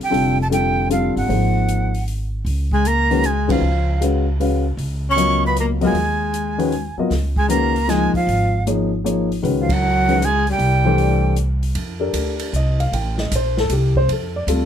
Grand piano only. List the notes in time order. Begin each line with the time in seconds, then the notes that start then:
0.10 D3 G3 C4 F4 A4
0.50 D3 G3 C4 F4 A4
0.89 D3 G3 C4 F4 A4
1.28 F3 A#3 D#4 G#4 C5
3.11 D#3 G#3 C#4 F#4 B4
3.48 D#3 G#3 C#4 F#4 B4
4.01 G#3 C#4 F#4 B4 F5
4.40 G#3 C#4 F#4 B4 F5
5.16 F#3 B3 F4 A#4 D#5
5.81 F#3 B3 F4 A#4 D#5
6.58 D#3 G#3 C#4 F#4 B4
6.98 F#3 B3 F4 A#4 D#5
7.49 D#3 G#3 C#4 F#4 B4
7.88 F3 A#3 D#4 G#4 D#5
8.67 F3 A#3 D#4 G#4 C#5
9.04 F3 A#3 D#4 G#4 C#5
9.43 D#3 G#3 C#4 F#4 B4
10.08 D#3 G#3 C#4 F#4 B4
10.85 E3 A3 D4 G4 C5
12.00 D4 G4 A4 A#4
12.56 D#5
12.80 F5
12.94 G5
13.19 D#5
13.36 C5
13.60 A4
13.72 G4
13.97 C5
14.12 A4
14.36 D5
14.48 G3 C4 F4 A4